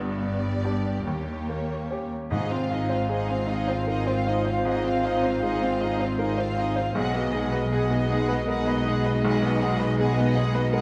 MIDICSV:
0, 0, Header, 1, 11, 480
1, 0, Start_track
1, 0, Tempo, 834492
1, 1333, Time_signature, 6, 3, 24, 8
1, 1333, Tempo, 791557
1, 1813, Tempo, 773196
1, 3733, Tempo, 755668
1, 6661, End_track
2, 0, Start_track
2, 0, Title_t, "Flute"
2, 0, Program_c, 0, 73
2, 1335, Note_on_c, 0, 77, 57
2, 4187, Note_off_c, 0, 77, 0
2, 4207, Note_on_c, 0, 75, 69
2, 6661, Note_off_c, 0, 75, 0
2, 6661, End_track
3, 0, Start_track
3, 0, Title_t, "Violin section"
3, 0, Program_c, 1, 48
3, 0, Note_on_c, 1, 74, 66
3, 592, Note_off_c, 1, 74, 0
3, 619, Note_on_c, 1, 73, 58
3, 1194, Note_off_c, 1, 73, 0
3, 1333, Note_on_c, 1, 75, 58
3, 1444, Note_off_c, 1, 75, 0
3, 1454, Note_on_c, 1, 77, 53
3, 1574, Note_off_c, 1, 77, 0
3, 1578, Note_on_c, 1, 75, 53
3, 1696, Note_off_c, 1, 75, 0
3, 1702, Note_on_c, 1, 77, 53
3, 1817, Note_off_c, 1, 77, 0
3, 1825, Note_on_c, 1, 75, 53
3, 1932, Note_off_c, 1, 75, 0
3, 1932, Note_on_c, 1, 77, 51
3, 2054, Note_off_c, 1, 77, 0
3, 2056, Note_on_c, 1, 75, 54
3, 2176, Note_off_c, 1, 75, 0
3, 2189, Note_on_c, 1, 77, 50
3, 2302, Note_off_c, 1, 77, 0
3, 2302, Note_on_c, 1, 75, 52
3, 2410, Note_off_c, 1, 75, 0
3, 2417, Note_on_c, 1, 77, 57
3, 2536, Note_off_c, 1, 77, 0
3, 2543, Note_on_c, 1, 75, 54
3, 2659, Note_off_c, 1, 75, 0
3, 2663, Note_on_c, 1, 77, 52
3, 2779, Note_off_c, 1, 77, 0
3, 2792, Note_on_c, 1, 75, 60
3, 2896, Note_off_c, 1, 75, 0
3, 2905, Note_on_c, 1, 77, 57
3, 3018, Note_on_c, 1, 75, 58
3, 3022, Note_off_c, 1, 77, 0
3, 3139, Note_off_c, 1, 75, 0
3, 3150, Note_on_c, 1, 77, 53
3, 3265, Note_off_c, 1, 77, 0
3, 3266, Note_on_c, 1, 75, 54
3, 3375, Note_off_c, 1, 75, 0
3, 3382, Note_on_c, 1, 77, 56
3, 3484, Note_on_c, 1, 75, 58
3, 3500, Note_off_c, 1, 77, 0
3, 3609, Note_off_c, 1, 75, 0
3, 3613, Note_on_c, 1, 77, 51
3, 3732, Note_off_c, 1, 77, 0
3, 3733, Note_on_c, 1, 75, 59
3, 3844, Note_off_c, 1, 75, 0
3, 3852, Note_on_c, 1, 77, 62
3, 3972, Note_off_c, 1, 77, 0
3, 3979, Note_on_c, 1, 75, 57
3, 4092, Note_on_c, 1, 77, 51
3, 4095, Note_off_c, 1, 75, 0
3, 4211, Note_off_c, 1, 77, 0
3, 4214, Note_on_c, 1, 78, 65
3, 4324, Note_off_c, 1, 78, 0
3, 4342, Note_on_c, 1, 75, 58
3, 4457, Note_off_c, 1, 75, 0
3, 4461, Note_on_c, 1, 78, 59
3, 4577, Note_off_c, 1, 78, 0
3, 4581, Note_on_c, 1, 75, 60
3, 4698, Note_off_c, 1, 75, 0
3, 4706, Note_on_c, 1, 78, 56
3, 4813, Note_off_c, 1, 78, 0
3, 4828, Note_on_c, 1, 75, 58
3, 4943, Note_off_c, 1, 75, 0
3, 4945, Note_on_c, 1, 78, 61
3, 5062, Note_off_c, 1, 78, 0
3, 5073, Note_on_c, 1, 75, 57
3, 5186, Note_off_c, 1, 75, 0
3, 5191, Note_on_c, 1, 78, 60
3, 5297, Note_off_c, 1, 78, 0
3, 5309, Note_on_c, 1, 75, 66
3, 5424, Note_off_c, 1, 75, 0
3, 5437, Note_on_c, 1, 78, 65
3, 5547, Note_on_c, 1, 75, 62
3, 5549, Note_off_c, 1, 78, 0
3, 5663, Note_on_c, 1, 78, 71
3, 5664, Note_off_c, 1, 75, 0
3, 5774, Note_off_c, 1, 78, 0
3, 5785, Note_on_c, 1, 75, 63
3, 5900, Note_on_c, 1, 78, 65
3, 5903, Note_off_c, 1, 75, 0
3, 6019, Note_off_c, 1, 78, 0
3, 6019, Note_on_c, 1, 75, 66
3, 6137, Note_off_c, 1, 75, 0
3, 6139, Note_on_c, 1, 78, 65
3, 6249, Note_off_c, 1, 78, 0
3, 6261, Note_on_c, 1, 75, 66
3, 6377, Note_off_c, 1, 75, 0
3, 6382, Note_on_c, 1, 78, 67
3, 6495, Note_on_c, 1, 75, 62
3, 6498, Note_off_c, 1, 78, 0
3, 6605, Note_on_c, 1, 78, 67
3, 6614, Note_off_c, 1, 75, 0
3, 6661, Note_off_c, 1, 78, 0
3, 6661, End_track
4, 0, Start_track
4, 0, Title_t, "Clarinet"
4, 0, Program_c, 2, 71
4, 1343, Note_on_c, 2, 72, 68
4, 4191, Note_off_c, 2, 72, 0
4, 4212, Note_on_c, 2, 68, 69
4, 6661, Note_off_c, 2, 68, 0
4, 6661, End_track
5, 0, Start_track
5, 0, Title_t, "Violin section"
5, 0, Program_c, 3, 48
5, 0, Note_on_c, 3, 67, 62
5, 1190, Note_off_c, 3, 67, 0
5, 1334, Note_on_c, 3, 68, 57
5, 1445, Note_off_c, 3, 68, 0
5, 1448, Note_on_c, 3, 65, 52
5, 1571, Note_off_c, 3, 65, 0
5, 1573, Note_on_c, 3, 68, 54
5, 1690, Note_on_c, 3, 65, 53
5, 1693, Note_off_c, 3, 68, 0
5, 1811, Note_off_c, 3, 65, 0
5, 1819, Note_on_c, 3, 68, 54
5, 1929, Note_off_c, 3, 68, 0
5, 1946, Note_on_c, 3, 65, 53
5, 2058, Note_on_c, 3, 68, 61
5, 2061, Note_off_c, 3, 65, 0
5, 2177, Note_off_c, 3, 68, 0
5, 2178, Note_on_c, 3, 65, 51
5, 2290, Note_on_c, 3, 68, 54
5, 2297, Note_off_c, 3, 65, 0
5, 2404, Note_off_c, 3, 68, 0
5, 2413, Note_on_c, 3, 65, 51
5, 2534, Note_off_c, 3, 65, 0
5, 2537, Note_on_c, 3, 68, 48
5, 2653, Note_on_c, 3, 65, 52
5, 2656, Note_off_c, 3, 68, 0
5, 2765, Note_on_c, 3, 68, 59
5, 2774, Note_off_c, 3, 65, 0
5, 2882, Note_off_c, 3, 68, 0
5, 2894, Note_on_c, 3, 65, 54
5, 3003, Note_on_c, 3, 68, 52
5, 3016, Note_off_c, 3, 65, 0
5, 3121, Note_on_c, 3, 65, 54
5, 3131, Note_off_c, 3, 68, 0
5, 3251, Note_off_c, 3, 65, 0
5, 3253, Note_on_c, 3, 68, 58
5, 3368, Note_off_c, 3, 68, 0
5, 3368, Note_on_c, 3, 65, 54
5, 3489, Note_on_c, 3, 68, 62
5, 3493, Note_off_c, 3, 65, 0
5, 3609, Note_on_c, 3, 65, 55
5, 3612, Note_off_c, 3, 68, 0
5, 3727, Note_on_c, 3, 68, 50
5, 3730, Note_off_c, 3, 65, 0
5, 3841, Note_off_c, 3, 68, 0
5, 3841, Note_on_c, 3, 65, 54
5, 3963, Note_on_c, 3, 68, 55
5, 3966, Note_off_c, 3, 65, 0
5, 4086, Note_on_c, 3, 65, 55
5, 4087, Note_off_c, 3, 68, 0
5, 4208, Note_off_c, 3, 65, 0
5, 4209, Note_on_c, 3, 68, 63
5, 4321, Note_off_c, 3, 68, 0
5, 4329, Note_on_c, 3, 66, 55
5, 4448, Note_on_c, 3, 68, 60
5, 4450, Note_off_c, 3, 66, 0
5, 4564, Note_on_c, 3, 66, 62
5, 4571, Note_off_c, 3, 68, 0
5, 4685, Note_on_c, 3, 68, 55
5, 4689, Note_off_c, 3, 66, 0
5, 4802, Note_off_c, 3, 68, 0
5, 4810, Note_on_c, 3, 66, 57
5, 4934, Note_off_c, 3, 66, 0
5, 4942, Note_on_c, 3, 68, 69
5, 5060, Note_off_c, 3, 68, 0
5, 5066, Note_on_c, 3, 66, 58
5, 5182, Note_off_c, 3, 66, 0
5, 5186, Note_on_c, 3, 68, 55
5, 5294, Note_off_c, 3, 68, 0
5, 5304, Note_on_c, 3, 66, 58
5, 5421, Note_on_c, 3, 68, 56
5, 5422, Note_off_c, 3, 66, 0
5, 5539, Note_on_c, 3, 66, 63
5, 5541, Note_off_c, 3, 68, 0
5, 5660, Note_off_c, 3, 66, 0
5, 5663, Note_on_c, 3, 68, 67
5, 5774, Note_off_c, 3, 68, 0
5, 5778, Note_on_c, 3, 66, 65
5, 5893, Note_on_c, 3, 68, 69
5, 5899, Note_off_c, 3, 66, 0
5, 6016, Note_off_c, 3, 68, 0
5, 6017, Note_on_c, 3, 66, 65
5, 6129, Note_on_c, 3, 68, 66
5, 6137, Note_off_c, 3, 66, 0
5, 6243, Note_off_c, 3, 68, 0
5, 6247, Note_on_c, 3, 66, 66
5, 6364, Note_on_c, 3, 68, 69
5, 6370, Note_off_c, 3, 66, 0
5, 6489, Note_off_c, 3, 68, 0
5, 6493, Note_on_c, 3, 66, 63
5, 6613, Note_off_c, 3, 66, 0
5, 6614, Note_on_c, 3, 68, 68
5, 6661, Note_off_c, 3, 68, 0
5, 6661, End_track
6, 0, Start_track
6, 0, Title_t, "Grand piano"
6, 0, Program_c, 4, 0
6, 0, Control_c, 4, 64, 127
6, 0, Note_on_c, 4, 43, 62
6, 130, Note_on_c, 4, 59, 43
6, 371, Note_on_c, 4, 62, 41
6, 372, Note_on_c, 4, 67, 46
6, 515, Note_off_c, 4, 59, 0
6, 591, Note_off_c, 4, 62, 0
6, 592, Note_off_c, 4, 43, 0
6, 592, Note_off_c, 4, 67, 0
6, 615, Note_on_c, 4, 39, 49
6, 625, Control_c, 4, 64, 0
6, 721, Control_c, 4, 64, 127
6, 859, Note_on_c, 4, 58, 43
6, 1095, Note_on_c, 4, 61, 39
6, 1102, Note_on_c, 4, 67, 39
6, 1241, Note_off_c, 4, 58, 0
6, 1307, Note_off_c, 4, 61, 0
6, 1311, Note_off_c, 4, 39, 0
6, 1311, Note_off_c, 4, 67, 0
6, 1327, Note_on_c, 4, 44, 65
6, 1345, Control_c, 4, 64, 0
6, 1430, Control_c, 4, 64, 127
6, 1448, Note_on_c, 4, 60, 47
6, 1567, Note_on_c, 4, 65, 46
6, 1643, Note_off_c, 4, 60, 0
6, 1683, Note_on_c, 4, 72, 49
6, 1762, Note_off_c, 4, 65, 0
6, 1802, Note_on_c, 4, 68, 52
6, 1880, Note_off_c, 4, 72, 0
6, 1929, Note_on_c, 4, 60, 44
6, 2001, Note_off_c, 4, 68, 0
6, 2043, Note_on_c, 4, 65, 48
6, 2124, Note_off_c, 4, 60, 0
6, 2164, Note_on_c, 4, 72, 48
6, 2241, Note_off_c, 4, 65, 0
6, 2290, Note_on_c, 4, 70, 43
6, 2362, Note_off_c, 4, 72, 0
6, 2408, Note_on_c, 4, 72, 49
6, 2412, Note_off_c, 4, 70, 0
6, 2528, Note_on_c, 4, 65, 46
6, 2603, Note_off_c, 4, 72, 0
6, 2644, Note_on_c, 4, 72, 49
6, 2723, Note_off_c, 4, 65, 0
6, 2747, Note_off_c, 4, 44, 0
6, 2770, Note_on_c, 4, 44, 65
6, 2787, Control_c, 4, 64, 0
6, 2842, Note_off_c, 4, 72, 0
6, 2874, Control_c, 4, 64, 127
6, 2890, Note_on_c, 4, 60, 52
6, 3015, Note_on_c, 4, 65, 49
6, 3087, Note_off_c, 4, 60, 0
6, 3130, Note_on_c, 4, 72, 50
6, 3210, Note_off_c, 4, 65, 0
6, 3251, Note_on_c, 4, 68, 51
6, 3328, Note_off_c, 4, 72, 0
6, 3370, Note_on_c, 4, 60, 46
6, 3447, Note_off_c, 4, 68, 0
6, 3487, Note_on_c, 4, 65, 47
6, 3565, Note_off_c, 4, 60, 0
6, 3606, Note_on_c, 4, 72, 53
6, 3681, Note_off_c, 4, 65, 0
6, 3725, Note_on_c, 4, 70, 47
6, 3800, Note_off_c, 4, 72, 0
6, 3842, Note_on_c, 4, 72, 51
6, 3849, Note_off_c, 4, 70, 0
6, 3972, Note_on_c, 4, 65, 45
6, 4039, Note_off_c, 4, 72, 0
6, 4087, Note_on_c, 4, 72, 53
6, 4163, Note_off_c, 4, 65, 0
6, 4183, Note_off_c, 4, 44, 0
6, 4209, Note_off_c, 4, 72, 0
6, 4209, Note_on_c, 4, 35, 68
6, 4222, Control_c, 4, 64, 0
6, 4304, Control_c, 4, 64, 127
6, 4326, Note_on_c, 4, 59, 54
6, 4448, Note_on_c, 4, 63, 52
6, 4522, Note_off_c, 4, 59, 0
6, 4572, Note_on_c, 4, 71, 53
6, 4643, Note_off_c, 4, 63, 0
6, 4700, Note_on_c, 4, 68, 59
6, 4766, Note_off_c, 4, 71, 0
6, 4817, Note_on_c, 4, 59, 48
6, 4891, Note_off_c, 4, 68, 0
6, 4938, Note_on_c, 4, 63, 58
6, 5010, Note_off_c, 4, 59, 0
6, 5055, Note_on_c, 4, 71, 56
6, 5131, Note_off_c, 4, 63, 0
6, 5178, Note_on_c, 4, 70, 49
6, 5250, Note_off_c, 4, 71, 0
6, 5299, Note_off_c, 4, 70, 0
6, 5304, Note_on_c, 4, 71, 56
6, 5416, Note_on_c, 4, 63, 55
6, 5494, Note_off_c, 4, 71, 0
6, 5545, Note_on_c, 4, 71, 56
6, 5611, Note_off_c, 4, 63, 0
6, 5634, Note_off_c, 4, 35, 0
6, 5667, Note_on_c, 4, 35, 78
6, 5673, Control_c, 4, 64, 0
6, 5736, Note_off_c, 4, 71, 0
6, 5758, Control_c, 4, 64, 127
6, 5782, Note_on_c, 4, 59, 59
6, 5899, Note_on_c, 4, 63, 58
6, 5973, Note_off_c, 4, 59, 0
6, 6016, Note_on_c, 4, 71, 58
6, 6090, Note_off_c, 4, 63, 0
6, 6143, Note_on_c, 4, 68, 67
6, 6207, Note_off_c, 4, 71, 0
6, 6253, Note_on_c, 4, 59, 55
6, 6330, Note_off_c, 4, 68, 0
6, 6370, Note_on_c, 4, 63, 55
6, 6445, Note_off_c, 4, 59, 0
6, 6493, Note_on_c, 4, 71, 61
6, 6564, Note_off_c, 4, 63, 0
6, 6612, Note_on_c, 4, 70, 57
6, 6661, Note_off_c, 4, 35, 0
6, 6661, Note_off_c, 4, 70, 0
6, 6661, Note_off_c, 4, 71, 0
6, 6661, End_track
7, 0, Start_track
7, 0, Title_t, "French horn section"
7, 0, Program_c, 5, 60
7, 1335, Note_on_c, 5, 65, 75
7, 1337, Note_on_c, 5, 60, 67
7, 4187, Note_off_c, 5, 65, 0
7, 4188, Note_off_c, 5, 60, 0
7, 4201, Note_on_c, 5, 63, 77
7, 4204, Note_on_c, 5, 56, 77
7, 6661, Note_off_c, 5, 56, 0
7, 6661, Note_off_c, 5, 63, 0
7, 6661, End_track
8, 0, Start_track
8, 0, Title_t, "Viola section"
8, 0, Program_c, 6, 48
8, 0, Note_on_c, 6, 59, 78
8, 589, Note_off_c, 6, 59, 0
8, 615, Note_on_c, 6, 58, 70
8, 1192, Note_off_c, 6, 58, 0
8, 1328, Note_on_c, 6, 63, 54
8, 1442, Note_off_c, 6, 63, 0
8, 1447, Note_on_c, 6, 60, 50
8, 1570, Note_off_c, 6, 60, 0
8, 1573, Note_on_c, 6, 63, 55
8, 1689, Note_on_c, 6, 60, 49
8, 1693, Note_off_c, 6, 63, 0
8, 1811, Note_off_c, 6, 60, 0
8, 1813, Note_on_c, 6, 63, 52
8, 1926, Note_off_c, 6, 63, 0
8, 1931, Note_on_c, 6, 60, 54
8, 2046, Note_on_c, 6, 63, 59
8, 2053, Note_off_c, 6, 60, 0
8, 2171, Note_off_c, 6, 63, 0
8, 2174, Note_on_c, 6, 60, 52
8, 2295, Note_off_c, 6, 60, 0
8, 2296, Note_on_c, 6, 63, 54
8, 2407, Note_off_c, 6, 63, 0
8, 2412, Note_on_c, 6, 60, 52
8, 2533, Note_off_c, 6, 60, 0
8, 2539, Note_on_c, 6, 63, 50
8, 2657, Note_off_c, 6, 63, 0
8, 2659, Note_on_c, 6, 60, 47
8, 2777, Note_off_c, 6, 60, 0
8, 2779, Note_on_c, 6, 63, 60
8, 2889, Note_off_c, 6, 63, 0
8, 2898, Note_on_c, 6, 60, 52
8, 3018, Note_off_c, 6, 60, 0
8, 3020, Note_on_c, 6, 63, 62
8, 3140, Note_off_c, 6, 63, 0
8, 3145, Note_on_c, 6, 60, 53
8, 3261, Note_on_c, 6, 63, 60
8, 3263, Note_off_c, 6, 60, 0
8, 3372, Note_off_c, 6, 63, 0
8, 3383, Note_on_c, 6, 60, 55
8, 3500, Note_off_c, 6, 60, 0
8, 3503, Note_on_c, 6, 63, 60
8, 3619, Note_off_c, 6, 63, 0
8, 3627, Note_on_c, 6, 60, 56
8, 3734, Note_on_c, 6, 63, 52
8, 3739, Note_off_c, 6, 60, 0
8, 3845, Note_off_c, 6, 63, 0
8, 3859, Note_on_c, 6, 60, 58
8, 3975, Note_off_c, 6, 60, 0
8, 3980, Note_on_c, 6, 63, 51
8, 4095, Note_off_c, 6, 63, 0
8, 4104, Note_on_c, 6, 60, 54
8, 4217, Note_off_c, 6, 60, 0
8, 4220, Note_on_c, 6, 56, 59
8, 4327, Note_off_c, 6, 56, 0
8, 4339, Note_on_c, 6, 59, 54
8, 4451, Note_on_c, 6, 56, 61
8, 4456, Note_off_c, 6, 59, 0
8, 4572, Note_off_c, 6, 56, 0
8, 4573, Note_on_c, 6, 59, 54
8, 4694, Note_off_c, 6, 59, 0
8, 4703, Note_on_c, 6, 56, 60
8, 4812, Note_off_c, 6, 56, 0
8, 4825, Note_on_c, 6, 59, 61
8, 4941, Note_off_c, 6, 59, 0
8, 4946, Note_on_c, 6, 56, 68
8, 5062, Note_off_c, 6, 56, 0
8, 5072, Note_on_c, 6, 59, 60
8, 5186, Note_off_c, 6, 59, 0
8, 5190, Note_on_c, 6, 56, 61
8, 5297, Note_off_c, 6, 56, 0
8, 5313, Note_on_c, 6, 59, 57
8, 5426, Note_off_c, 6, 59, 0
8, 5433, Note_on_c, 6, 56, 55
8, 5547, Note_off_c, 6, 56, 0
8, 5553, Note_on_c, 6, 59, 57
8, 5665, Note_on_c, 6, 56, 67
8, 5667, Note_off_c, 6, 59, 0
8, 5775, Note_off_c, 6, 56, 0
8, 5791, Note_on_c, 6, 59, 63
8, 5905, Note_off_c, 6, 59, 0
8, 5910, Note_on_c, 6, 56, 71
8, 6024, Note_off_c, 6, 56, 0
8, 6035, Note_on_c, 6, 59, 63
8, 6145, Note_off_c, 6, 59, 0
8, 6149, Note_on_c, 6, 56, 70
8, 6254, Note_off_c, 6, 56, 0
8, 6267, Note_on_c, 6, 59, 66
8, 6380, Note_off_c, 6, 59, 0
8, 6382, Note_on_c, 6, 56, 73
8, 6498, Note_off_c, 6, 56, 0
8, 6499, Note_on_c, 6, 59, 71
8, 6617, Note_off_c, 6, 59, 0
8, 6621, Note_on_c, 6, 56, 69
8, 6661, Note_off_c, 6, 56, 0
8, 6661, End_track
9, 0, Start_track
9, 0, Title_t, "Timpani"
9, 0, Program_c, 7, 47
9, 1333, Note_on_c, 7, 44, 80
9, 2031, Note_off_c, 7, 44, 0
9, 6661, End_track
10, 0, Start_track
10, 0, Title_t, "Cello section"
10, 0, Program_c, 8, 48
10, 0, Note_on_c, 8, 43, 66
10, 600, Note_off_c, 8, 43, 0
10, 617, Note_on_c, 8, 39, 55
10, 1217, Note_off_c, 8, 39, 0
10, 1332, Note_on_c, 8, 44, 70
10, 4185, Note_off_c, 8, 44, 0
10, 4211, Note_on_c, 8, 47, 80
10, 6661, Note_off_c, 8, 47, 0
10, 6661, End_track
11, 0, Start_track
11, 0, Title_t, "Double bass section"
11, 0, Program_c, 10, 48
11, 0, Note_on_c, 10, 31, 66
11, 596, Note_off_c, 10, 31, 0
11, 611, Note_on_c, 10, 39, 57
11, 1213, Note_off_c, 10, 39, 0
11, 1326, Note_on_c, 10, 32, 71
11, 4182, Note_off_c, 10, 32, 0
11, 4206, Note_on_c, 10, 35, 72
11, 6661, Note_off_c, 10, 35, 0
11, 6661, End_track
0, 0, End_of_file